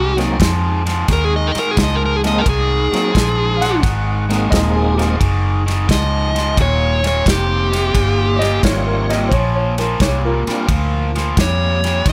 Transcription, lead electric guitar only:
Already playing: F#4
1.13 A#4
1.25 G#4
1.36 D#5
1.48 A#4
1.59 A#4
1.71 G#4
1.84 D#5
1.95 A#4
2.05 A#4
2.16 G#4
2.27 D#5
2.38 A#4
2.49 G#4
5.92 D#5
6.62 C#5
7.07 C#5
7.29 G4
11.41 C#5
12.09 D#5

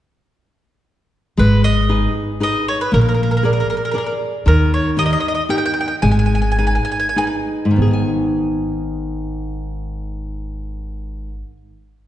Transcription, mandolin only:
1.39 B4
1.64 D#5
2.43 D#5
2.68 C#5
2.81 B4
2.94 A#4
3.01 A#4
3.09 A#4
3.14 A#4
3.23 A#4
3.31 A#4
3.37 A#4
3.45 A#4
3.53 A#4
3.60 A#4
3.70 A#4
3.77 A#4
3.85 A#4
3.91 A#4
3.98 A#4
4.06 A#4
4.48 A#4
4.74 C#5
4.99 D#5
5.06 D#5
5.13 D#5
5.20 D#5
5.28 D#5
5.35 D#5
5.50 G5
5.58 G5
5.66 G5
5.74 G5
5.81 G5
5.88 G5
6.02 G#5
6.11 G#5
6.19 G#5
6.26 G#5
6.35 G#5
6.42 G#5
6.52 G#5
6.59 G#5
6.67 G#5
6.75 G#5
6.85 G#5
6.92 G#5
7.00 G#5
7.09 G#5
7.18 G#5
7.27 G#5

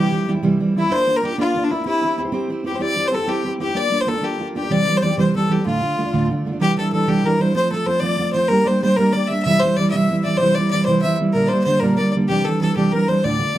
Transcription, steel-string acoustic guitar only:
Already playing: C3 E3 G3 C4 E4
0.12 E3 G3 C4 E4
0.27 E3 G3 C4 E4
0.34 G3 C4 E4
0.42 C3 E3 G3 C4 E4
0.60 E3 G3 C4 E4
0.75 E3 G3 C4 E4
0.82 G3 C4 E4
0.89 A#3 D4 F4 A#4
1.07 A#3 D4 F4 A#4
1.23 A#3 D4 F4 A#4
1.30 D4 F4 A#4
1.38 A#3 D4 F4 A#4
1.56 A#3 D4 F4 A#4
1.71 A#3 D4 F4 A#4
1.78 D4 F4 A#4
1.85 C4 E4 G4 C5
2.03 C4 E4 G4 C5
2.18 C4 E4 G4 C5
2.25 E4 G4 C5
2.32 C4 E4 G4 C5
2.50 C4 E4 G4 C5
2.64 C4 E4 G4 C5
2.71 E4 G4 C5
2.79 C4 E4 G4 C5
2.96 C4 E4 C5
3.12 C4 E4 G4 C5
3.19 E4 G4 C5
3.27 C4 E4 G4 C5
3.44 C4 E4 G4 C5
3.60 C4 E4 G4 C5
3.67 E4 G4 C5
3.75 A#3 D4 F4 A#4
3.91 A#3 D4 F4 A#4
4.06 A#3 D4 F4 A#4
4.14 D4 F4 A#4
4.21 A#3 D4 F4 A#4
4.39 A#3 D4 F4 A#4
4.55 A#3 D4 F4 A#4
4.62 D4 F4 A#4
4.70 C3 E3 G3 C4 G4
4.86 E3 G3 C4 G4
5.03 E3 G3 C4 G4
5.09 G3 C4 G4
5.17 C3 E3 G3 C4 G4
5.35 E3 G3 C4 G4
5.49 E3 G3 C4 G4
5.57 G3 C4 G4
5.65 D2 A2 D3 A3 D4 F4
5.82 D3 D4 F4
5.97 D3 A3 D4 F4
6.05 D3 A3 D4 F4
6.13 D2 A2 D3 A3 D4 F4
6.30 D3 A3 D4 F4
6.45 D3 A3 D4 F4
6.52 D3 A3 D4 F4
6.59 C3 E3 G3 D4 E4
6.77 E3 G3 D4 E4
6.92 E3 G3 D4 E4
7.07 C3 E3 G3 D4 E4
7.24 E3 G3 D4 E4
7.39 E3 G3 D4 E4
7.54 F3 A3 C4 F4
7.72 F3 A3 C4 F4
7.86 F3 A3 C4 F4
8.01 F3 A3 C4 F4
8.19 F3 A3 C4 F4
8.34 F3 A3 C4 F4
8.50 G3 A#3 D4 G4
8.65 G3 A#3 D4 G4
8.83 G3 A#3 D4 G4
8.98 G3 A#3 D4 G4
9.14 G3 A#3 D4 G4
9.30 G3 A#3 D4 G4
9.46 C3 E3 G3 C4 E4
9.62 E3 C4 E4
9.77 E3 G3 C4 E4
9.93 C3 E3 G3 C4 E4
10.09 E3 G3 C4 E4
10.25 E3 G3 C4 E4
10.40 C3 E3 G3 C4 E4
10.57 E3 G3 C4 E4
10.73 E3 G3 C4 E4
10.87 C3 E3 G3 C4 E4
11.04 E3 G3 C4 E4
11.20 E3 G3 C4 E4
11.34 A#2 D3 G3 A#3 D4
11.50 D3 G3 A#3 D4
11.66 D3 G3 A#3 D4
11.82 A#2 D3 G3 A#3 D4
11.98 D3 G3 A#3 D4
12.15 D3 G3 A#3 D4
12.29 C3 E3 G3 C4 D4
12.45 E3 G3 C4 D4
12.60 E3 G3 C4 D4
12.76 C3 E3 G3 C4 D4
12.93 E3 G3 C4 D4
13.08 E3 G3 C4 D4
13.24 D2 A2 D3 A3 D4 F4
13.39 D3 A3 D4 F4
13.54 D3

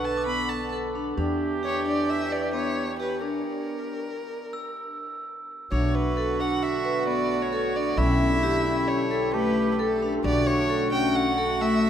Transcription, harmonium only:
Already playing: D3 B3 A4
1.17 E3 D4 G4
5.72 D3 A3 B3 F#4
7.99 G4
10.24 D3 A3 F#4

